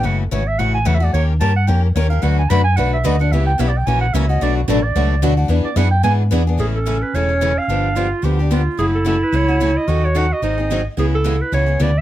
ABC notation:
X:1
M:4/4
L:1/8
Q:"Swing" 1/4=220
K:A
V:1 name="Clarinet"
f A c e f g (3f e d | c z a f =g ^A c ^e | f g b g f e ^d f | e =g (3e d g ^g f e ^d |
d F A d3 z2 | z d f =g ^g z3 | C8 | D2 =F2 =G2 F2 |
E8 | F4 ^D3 z | E6 z2 |]
V:2 name="Clarinet"
z8 | z8 | z8 | z8 |
z8 | z8 | G A2 B c3 =f- | =f3 z4 z |
G A A B c3 ^d- | ^d c f d4 z | G A2 B c2 d e |]
V:3 name="Steel-string acoustic guitar"
z8 | z8 | [D,F,A,DFB] z [D,F,A,DFB] z [D,F,A,DFB] z [D,F,A,DFB] z | [C,=G,B,EB] z [C,G,B,EB] z [F,CE^A] z [F,CEA] z |
[B,,F,A,DFB] z [B,,F,A,DFB] z [B,,F,A,DFB] z [B,,F,A,DFB] z | [E,B,DGB] z [E,B,DGB] z [E,B,DGB] z [E,B,DGB] z | [E,G,CEA] z [E,G,CEA] z [E,G,CEA] z [E,G,CEA] z | [D,=F,B,D=G] z [D,F,B,DG] z [D,F,B,DG] z [D,F,B,DG] z |
[F,CEA] z [F,CEA] z [F,CEA] z [F,CEA] z | [^D,F,C^DA] z [D,F,CDA] z [D,F,^B,DG] z [D,F,B,DG] z | [C,G,B,EG] z [C,G,B,EG] z [C,G,B,EG] z [C,G,B,EG] z |]
V:4 name="Steel-string acoustic guitar"
[C,E,A,CF] z [C,E,A,CF] z [C,E,A,CF] z [C,E,A,CF] [A,CF] | [^D,^A,C=G^A] z [D,A,CGA] z [D,A,CGA] z [D,A,CGA] [CGA] | [D,F,A,DFB] z [D,F,A,DFB] z [D,F,A,DFB] z [D,F,A,DFB] [A,DFB] | [C,E,B,C=G] z [C,E,B,CG] z [C,E,^A,CF] z [C,E,A,CF] [A,CF] |
[B,,F,A,DF] z [B,,F,A,DF] z [B,,F,A,DF] z [B,,F,A,DF] [A,DF] | [E,B,DG] z [E,B,DG] z [E,B,DG] z [E,B,DG] [B,DG] | [C,E,A,CG] z [C,E,A,CG] z [C,E,A,CG] [A,CG] [C,E,A,CG] z | [D,=F,B,D=G] z [D,F,B,DG] z [D,F,B,DG] [B,DG] [D,F,B,DG] z |
[C,E,A,CF] z [C,E,A,CF] z [C,E,A,CF] [A,CF] [C,E,A,CF] z | [^D,F,C^DA] z [D,F,CDA] z [D,F,^B,DG] [B,DG] [D,F,B,DG] z | [C,E,B,CG] z [C,E,B,CG] z [C,E,B,CG] [B,CG] [C,E,B,CG] z |]
V:5 name="Fingered electric bass" clef=bass
F,,,2 G,,,2 A,,,2 E,,2 | ^D,,2 =G,,2 ^E,,2 D,,2 | D,,2 F,,2 B,,,2 D,,2 | C,,2 B,,,2 ^A,,,2 C,,2 |
B,,,2 A,,,2 C,,2 D,,2 | E,, z F,,2 G,,2 E,,2 | A,,,4 E,,,4 | =G,,,4 D,,4 |
F,,,4 C,,4 | ^D,,4 G,,,4 | C,,4 C,,2 D,,2 |]